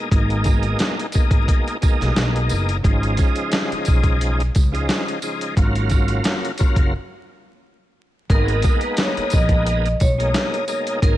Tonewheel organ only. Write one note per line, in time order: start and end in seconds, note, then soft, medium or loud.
0.10 1.06 B2 medium
0.10 1.06 G#3 medium
0.10 1.06 A#3 medium
0.10 1.07 D#4 loud
1.13 1.77 B2 medium
1.13 1.77 G#3 medium
1.13 1.77 A#3 medium
1.13 1.78 D#4 loud
1.81 2.76 B2 medium
1.81 2.77 G#3 medium
1.81 2.77 A#3 medium
1.81 2.77 D#4 loud
2.83 4.42 C#3 medium
2.83 4.42 F3 medium
2.83 4.42 G#3 medium
2.83 4.43 D#4 loud
4.72 5.18 C#3 medium
4.72 5.19 F3 medium
4.72 5.19 G#3 medium
4.72 5.19 D#4 medium
5.22 5.54 C#3 medium
5.22 5.54 F3 medium
5.22 5.55 G#3 medium
5.22 5.55 D#4 medium
5.56 6.51 C#3 medium
5.56 6.52 F#3 medium
5.56 6.52 A#3 medium
5.56 6.52 F4 loud
6.58 6.93 C#3 medium
6.58 6.93 F#3 medium
6.58 6.94 A#3 medium
6.58 6.94 F4 loud
8.29 9.88 G#3 medium
8.29 9.88 A#3 medium
8.29 9.88 B3 medium
8.29 9.89 D#4 loud
10.18 10.64 B2 medium
10.18 10.64 G#3 medium
10.18 10.65 A#3 medium
10.18 10.65 D#4 loud
10.67 10.99 B2 medium
10.67 11.00 G#3 medium
10.67 11.00 A#3 medium
10.67 11.00 D#4 medium
11.01 11.17 B2 medium
11.01 11.17 G#3 medium
11.01 11.17 A#3 medium
11.01 11.17 D#4 loud